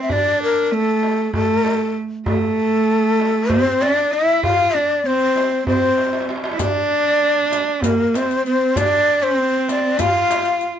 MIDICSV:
0, 0, Header, 1, 5, 480
1, 0, Start_track
1, 0, Tempo, 617920
1, 78, Time_signature, 7, 3, 24, 8
1, 8386, End_track
2, 0, Start_track
2, 0, Title_t, "Ney"
2, 0, Program_c, 0, 77
2, 18, Note_on_c, 0, 76, 72
2, 95, Note_on_c, 0, 74, 97
2, 107, Note_off_c, 0, 76, 0
2, 327, Note_off_c, 0, 74, 0
2, 332, Note_on_c, 0, 70, 88
2, 515, Note_off_c, 0, 70, 0
2, 515, Note_on_c, 0, 70, 64
2, 575, Note_on_c, 0, 69, 90
2, 587, Note_off_c, 0, 70, 0
2, 1045, Note_off_c, 0, 69, 0
2, 1050, Note_on_c, 0, 69, 94
2, 1525, Note_off_c, 0, 69, 0
2, 1768, Note_on_c, 0, 69, 99
2, 2722, Note_on_c, 0, 72, 101
2, 2733, Note_off_c, 0, 69, 0
2, 2969, Note_on_c, 0, 74, 97
2, 2981, Note_off_c, 0, 72, 0
2, 3213, Note_on_c, 0, 76, 100
2, 3225, Note_off_c, 0, 74, 0
2, 3443, Note_off_c, 0, 76, 0
2, 3448, Note_on_c, 0, 77, 105
2, 3688, Note_on_c, 0, 74, 94
2, 3700, Note_off_c, 0, 77, 0
2, 3932, Note_on_c, 0, 72, 94
2, 3944, Note_off_c, 0, 74, 0
2, 4407, Note_off_c, 0, 72, 0
2, 4414, Note_on_c, 0, 72, 101
2, 4887, Note_off_c, 0, 72, 0
2, 5140, Note_on_c, 0, 74, 99
2, 6092, Note_on_c, 0, 70, 85
2, 6104, Note_off_c, 0, 74, 0
2, 6337, Note_on_c, 0, 72, 88
2, 6349, Note_off_c, 0, 70, 0
2, 6569, Note_off_c, 0, 72, 0
2, 6576, Note_on_c, 0, 72, 92
2, 6813, Note_on_c, 0, 74, 93
2, 6825, Note_off_c, 0, 72, 0
2, 7170, Note_on_c, 0, 72, 89
2, 7181, Note_off_c, 0, 74, 0
2, 7525, Note_off_c, 0, 72, 0
2, 7542, Note_on_c, 0, 74, 87
2, 7769, Note_on_c, 0, 77, 99
2, 7781, Note_off_c, 0, 74, 0
2, 8305, Note_off_c, 0, 77, 0
2, 8386, End_track
3, 0, Start_track
3, 0, Title_t, "Cello"
3, 0, Program_c, 1, 42
3, 0, Note_on_c, 1, 60, 72
3, 71, Note_on_c, 1, 62, 86
3, 82, Note_off_c, 1, 60, 0
3, 554, Note_on_c, 1, 57, 81
3, 566, Note_off_c, 1, 62, 0
3, 1028, Note_off_c, 1, 57, 0
3, 1033, Note_on_c, 1, 57, 85
3, 1516, Note_off_c, 1, 57, 0
3, 1753, Note_on_c, 1, 57, 95
3, 2713, Note_on_c, 1, 60, 90
3, 2725, Note_off_c, 1, 57, 0
3, 2957, Note_on_c, 1, 62, 88
3, 2969, Note_off_c, 1, 60, 0
3, 3204, Note_on_c, 1, 64, 84
3, 3215, Note_off_c, 1, 62, 0
3, 3443, Note_on_c, 1, 65, 93
3, 3454, Note_off_c, 1, 64, 0
3, 3682, Note_on_c, 1, 62, 79
3, 3694, Note_off_c, 1, 65, 0
3, 3920, Note_off_c, 1, 62, 0
3, 3925, Note_on_c, 1, 60, 84
3, 4372, Note_off_c, 1, 60, 0
3, 4397, Note_on_c, 1, 60, 82
3, 4879, Note_off_c, 1, 60, 0
3, 5077, Note_on_c, 1, 64, 57
3, 5115, Note_on_c, 1, 62, 96
3, 5127, Note_off_c, 1, 64, 0
3, 6077, Note_on_c, 1, 58, 78
3, 6089, Note_off_c, 1, 62, 0
3, 6328, Note_on_c, 1, 60, 82
3, 6340, Note_off_c, 1, 58, 0
3, 6565, Note_off_c, 1, 60, 0
3, 6570, Note_on_c, 1, 60, 75
3, 6808, Note_on_c, 1, 62, 88
3, 6820, Note_off_c, 1, 60, 0
3, 7159, Note_on_c, 1, 60, 89
3, 7171, Note_off_c, 1, 62, 0
3, 7762, Note_on_c, 1, 65, 91
3, 7773, Note_off_c, 1, 60, 0
3, 8301, Note_off_c, 1, 65, 0
3, 8386, End_track
4, 0, Start_track
4, 0, Title_t, "Darbuka"
4, 75, Note_on_c, 9, 64, 79
4, 153, Note_off_c, 9, 64, 0
4, 322, Note_on_c, 9, 62, 24
4, 400, Note_off_c, 9, 62, 0
4, 565, Note_on_c, 9, 62, 26
4, 642, Note_off_c, 9, 62, 0
4, 799, Note_on_c, 9, 63, 61
4, 877, Note_off_c, 9, 63, 0
4, 1037, Note_on_c, 9, 64, 84
4, 1115, Note_off_c, 9, 64, 0
4, 1279, Note_on_c, 9, 63, 64
4, 1357, Note_off_c, 9, 63, 0
4, 1403, Note_on_c, 9, 62, 23
4, 1481, Note_off_c, 9, 62, 0
4, 1757, Note_on_c, 9, 64, 97
4, 1835, Note_off_c, 9, 64, 0
4, 2000, Note_on_c, 9, 62, 24
4, 2078, Note_off_c, 9, 62, 0
4, 2243, Note_on_c, 9, 62, 25
4, 2320, Note_off_c, 9, 62, 0
4, 2485, Note_on_c, 9, 63, 58
4, 2562, Note_off_c, 9, 63, 0
4, 2716, Note_on_c, 9, 64, 91
4, 2794, Note_off_c, 9, 64, 0
4, 2962, Note_on_c, 9, 63, 61
4, 3040, Note_off_c, 9, 63, 0
4, 3445, Note_on_c, 9, 64, 93
4, 3522, Note_off_c, 9, 64, 0
4, 3684, Note_on_c, 9, 62, 26
4, 3761, Note_off_c, 9, 62, 0
4, 3923, Note_on_c, 9, 62, 26
4, 4001, Note_off_c, 9, 62, 0
4, 4163, Note_on_c, 9, 63, 60
4, 4240, Note_off_c, 9, 63, 0
4, 4403, Note_on_c, 9, 64, 88
4, 4481, Note_off_c, 9, 64, 0
4, 4640, Note_on_c, 9, 63, 54
4, 4697, Note_on_c, 9, 62, 57
4, 4718, Note_off_c, 9, 63, 0
4, 4762, Note_on_c, 9, 63, 63
4, 4775, Note_off_c, 9, 62, 0
4, 4822, Note_on_c, 9, 62, 70
4, 4840, Note_off_c, 9, 63, 0
4, 4886, Note_on_c, 9, 63, 69
4, 4900, Note_off_c, 9, 62, 0
4, 4940, Note_on_c, 9, 62, 75
4, 4963, Note_off_c, 9, 63, 0
4, 5001, Note_on_c, 9, 63, 78
4, 5017, Note_off_c, 9, 62, 0
4, 5062, Note_on_c, 9, 62, 84
4, 5079, Note_off_c, 9, 63, 0
4, 5122, Note_on_c, 9, 64, 82
4, 5139, Note_off_c, 9, 62, 0
4, 5200, Note_off_c, 9, 64, 0
4, 5360, Note_on_c, 9, 62, 25
4, 5438, Note_off_c, 9, 62, 0
4, 5606, Note_on_c, 9, 62, 23
4, 5684, Note_off_c, 9, 62, 0
4, 5840, Note_on_c, 9, 63, 61
4, 5917, Note_off_c, 9, 63, 0
4, 6077, Note_on_c, 9, 64, 81
4, 6154, Note_off_c, 9, 64, 0
4, 6325, Note_on_c, 9, 63, 64
4, 6403, Note_off_c, 9, 63, 0
4, 6447, Note_on_c, 9, 62, 23
4, 6525, Note_off_c, 9, 62, 0
4, 6805, Note_on_c, 9, 64, 91
4, 6883, Note_off_c, 9, 64, 0
4, 7051, Note_on_c, 9, 62, 22
4, 7129, Note_off_c, 9, 62, 0
4, 7288, Note_on_c, 9, 62, 23
4, 7366, Note_off_c, 9, 62, 0
4, 7524, Note_on_c, 9, 63, 61
4, 7601, Note_off_c, 9, 63, 0
4, 7765, Note_on_c, 9, 64, 84
4, 7842, Note_off_c, 9, 64, 0
4, 8005, Note_on_c, 9, 63, 73
4, 8083, Note_off_c, 9, 63, 0
4, 8121, Note_on_c, 9, 62, 26
4, 8199, Note_off_c, 9, 62, 0
4, 8386, End_track
5, 0, Start_track
5, 0, Title_t, "Riq"
5, 5122, Note_on_c, 9, 54, 58
5, 5199, Note_off_c, 9, 54, 0
5, 5846, Note_on_c, 9, 54, 48
5, 5924, Note_off_c, 9, 54, 0
5, 6088, Note_on_c, 9, 54, 57
5, 6166, Note_off_c, 9, 54, 0
5, 6333, Note_on_c, 9, 54, 47
5, 6410, Note_off_c, 9, 54, 0
5, 6454, Note_on_c, 9, 54, 17
5, 6532, Note_off_c, 9, 54, 0
5, 6572, Note_on_c, 9, 54, 17
5, 6649, Note_off_c, 9, 54, 0
5, 6812, Note_on_c, 9, 54, 60
5, 6890, Note_off_c, 9, 54, 0
5, 7529, Note_on_c, 9, 54, 45
5, 7607, Note_off_c, 9, 54, 0
5, 7759, Note_on_c, 9, 54, 61
5, 7837, Note_off_c, 9, 54, 0
5, 8007, Note_on_c, 9, 54, 48
5, 8085, Note_off_c, 9, 54, 0
5, 8120, Note_on_c, 9, 54, 20
5, 8197, Note_off_c, 9, 54, 0
5, 8241, Note_on_c, 9, 54, 19
5, 8319, Note_off_c, 9, 54, 0
5, 8386, End_track
0, 0, End_of_file